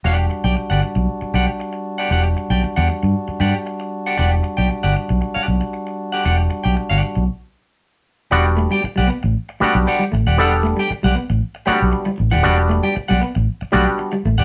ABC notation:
X:1
M:4/4
L:1/16
Q:1/4=116
K:Em
V:1 name="Clean electric guitar"
[Gdf]2 z [Gdg] z [Gdf] z4 [Gdf] z4 [Gdf] | [Gdf] z2 [Gdg] z [Gdf] z4 [Gdf] z4 [Gdf] | [Gdf] z2 [Gdg] z [Gdf] z3 [Gdf]2 z4 [Gdf] | [Gdf] z2 [Gdg] z [Gdf]2 z8 z |
[Gdf] z2 [Gdg] z [Gdf] z4 [Gdf] z [Gdf] z2 [Gdf] | [Gdf] z2 [Gdg] z [Gdf] z4 [Gdf] z4 [Gdf] | [Gdf] z2 [Gdg] z [Gdf] z4 [Gdf] z4 [Gdf] |]
V:2 name="Tonewheel organ"
[G,DF]16- | [G,DF]16- | [G,DF]16- | [G,DF]8 z8 |
z16 | z16 | z16 |]
V:3 name="Clav"
z16 | z16 | z16 | z16 |
[G,B,DF]4 z6 [G,B,DF]4 z2 | [G,B,DA]4 z6 [F,G,B,DF]4 z2 | [G,B,DF]4 z6 [G,B,DF]4 z2 |]
V:4 name="Clean electric guitar"
z16 | z16 | z16 | z16 |
z2 A, G, z G, B, z3 A, z2 G, A, z | z2 A, G, z G, B, z3 A, z2 G, z E, | z2 A, G, z G, B, z3 A, z2 G, A, z |]
V:5 name="Fingered electric bass" clef=bass
E,,,2 z B,,, z G,,, z B,,, z2 B,,, z4 z | E,,,2 z B,,, z E,, z G,, z2 G,, z4 z | E,,,2 z B,,, z G,,, z B,,, z2 B,,, z4 z | E,,,2 z B,,, z G,,, z B,,, z8 |
E,,,3 z2 B,,, z A,,, z3 B,,, z2 A,,, ^D,,, | E,,,3 z2 B,,, z A,,, z3 B,,, z2 A,,, ^D,,, | E,,,3 z2 B,,, z A,,, z2 B,,, z3 A,,, ^D,,, |]